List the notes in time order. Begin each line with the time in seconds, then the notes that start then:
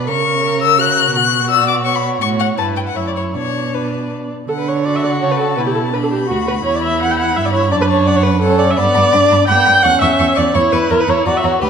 0.07 C#3 A#4 C#6
0.42 A#4
0.62 E6
0.78 F#4 A#4 F#6
1.15 B2 F#4 F#6
1.49 D5 E6
1.68 D6
1.85 C#5 C#6
1.95 B5
2.21 A2 F#4 C#6
2.39 F#5
2.58 G2 E4 B4 A5
2.76 G5
2.87 F#5
2.95 F#2 E4 C#5 E5
3.07 D5
3.16 C#5
3.34 B2 D4 C#5 D5
3.72 D4 B4
4.48 D3 A4 F#5
4.59 B4
4.68 C#5
4.86 F#4 D5 F#5
4.96 E5
5.03 D5
5.22 C#3 C#5 A5
5.31 B4
5.39 A4
5.57 B2 E4 B4
5.66 G4
5.75 A4
5.93 D4 B4 B5
6.03 A4
6.11 G4
6.28 D2 F#4
6.47 B4
6.64 E2 E4 C#5
6.75 D5
6.84 E5
7.02 F#5
7.11 G5
7.19 F#5
7.35 G2 E5
7.45 D5
7.54 C#5
7.70 F#2 D4 D5 A5
7.81 B4
7.90 C#5
8.07 D5 F#5
8.16 C#5
8.23 B4
8.41 C#4 A4 F#5
8.59 D5
8.70 E5
8.76 G2 B3 D5 B5
8.94 G2 B5
9.12 G2 D4 B5
9.31 G2 B5
9.47 G2 B3 G5 B5
9.65 G2 B5
9.83 E2 C#4 F#5 C#6
10.01 E2 E5 C#6
10.19 E2 C#6
10.35 E2 D5 C#6
10.54 E2 E4 C#5 C#6
10.72 E2 B4 C#6
10.89 E2 A#4 A#5
11.00 B4
11.07 E2 C#5 A#5
11.26 E2 F#4 D5 A#5
11.37 E5
11.43 E2 C#5 A#5
11.62 D2 G4 B4 B5